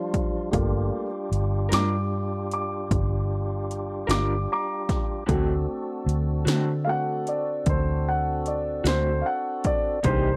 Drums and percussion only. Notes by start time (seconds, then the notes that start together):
0.14 kick, closed hi-hat
0.53 kick, closed hi-hat
1.33 closed hi-hat
1.72 snare, closed hi-hat
2.51 closed hi-hat
2.91 kick, closed hi-hat
3.71 closed hi-hat
4.10 snare, closed hi-hat
4.89 kick, snare, closed hi-hat
5.29 kick, closed hi-hat
6.09 closed hi-hat
6.47 snare, closed hi-hat
7.27 closed hi-hat
7.66 kick, closed hi-hat
8.46 closed hi-hat
8.86 snare, closed hi-hat
9.64 kick, closed hi-hat
10.04 kick, closed hi-hat